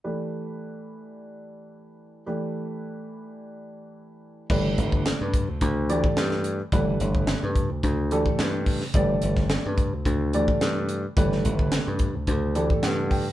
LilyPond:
<<
  \new Staff \with { instrumentName = "Grand piano" } { \time 4/4 \key g \major \tempo 4 = 108 << { r1 | r1 | r1 | r1 |
r1 | r2 r8 d''8 fis''8 g''8 | } \\ { <e a d' g' b'>1 | <e a d' g' b'>1 | <e a d' g' b'>4. r4 <e a d' g' d''>4 r8 | <e a d' g' b'>4. r4 <e a d' g' a'>4 r8 |
<e a d' g' d''>4. r4 <e a d' g' d''>4 r8 | <e a d' g' b'>4. r4 <e a d' g' a'>4 r8 | } >> }
  \new Staff \with { instrumentName = "Slap bass" } { \clef bass \time 4/4 \key g \major r1 | r1 | g,,8 g,,8. g,8 d,16 d,4 g,4 | g,,8 g,,8. g,8 d,16 d,4 g,4 |
g,,8 g,,8. g,8 d,16 d,4 g,4 | g,,8 g,,8. g,8 d,16 d,4 g,4 | }
  \new DrumStaff \with { instrumentName = "Drums" } \drummode { \time 4/4 r4 r4 r4 r4 | r4 r4 r4 r4 | <cymc bd>8 hh16 bd16 <hh sn>8 <hh bd>8 <hh bd>8 hh16 bd16 <hh sn>16 sn16 hh8 | <hh bd>8 hh16 bd16 <hh sn>8 <hh bd>8 <hh bd>8 hh16 bd16 <hh sn>8 <hho bd>16 sn16 |
<hh bd>8 hh16 <bd sn>16 <hh sn>8 <hh bd>8 <hh bd>8 hh16 bd16 <hh sn>8 hh8 | <hh bd>16 sn16 hh16 bd16 <hh sn>8 <hh bd>8 <hh bd>8 hh16 bd16 <hh sn>8 <hho bd>8 | }
>>